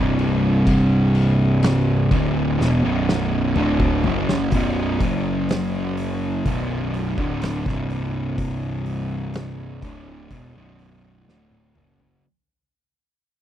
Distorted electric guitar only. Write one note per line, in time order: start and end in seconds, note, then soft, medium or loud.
0.00 2.10 C2 loud
0.00 2.10 G2 loud
0.00 2.11 C3 loud
2.11 2.58 D2 medium
2.11 2.59 A2 loud
2.11 2.59 D3 loud
2.59 2.82 E2 medium
2.59 2.83 B2 medium
2.84 3.55 B1 loud
2.84 3.55 F#2 loud
2.84 3.55 B2 loud
3.56 4.03 D2 medium
3.56 4.03 A2 medium
3.56 4.03 D3 medium
4.05 4.52 F#2 loud
4.05 4.52 C#3 loud
4.05 4.52 F#3 loud
4.54 5.00 B1 medium
4.54 5.00 F#2 loud
4.54 5.01 B2 loud
5.02 6.44 F#2 medium
5.02 6.45 C#3 loud
5.02 6.45 F#3 medium
6.46 7.17 B1 medium
6.46 7.17 F#2 medium
6.46 7.17 B2 medium
7.18 7.65 D2 medium
7.18 7.65 A2 medium
7.18 7.65 D3 medium
7.67 9.82 C2 medium
7.67 9.82 G2 medium
7.67 9.83 C3 loud
9.84 10.30 D2 medium
9.84 10.30 A2 medium
9.84 10.31 D3 loud
10.32 10.54 E2 medium
10.32 10.55 B2 loud
10.56 11.27 B1 medium
10.56 11.27 F#2 medium
10.56 11.27 B2 loud
11.29 11.75 D2 medium
11.29 11.75 A2 medium
11.29 11.75 D3 medium
11.76 12.23 F#2 medium
11.76 12.23 C#3 medium
11.76 12.23 F#3 loud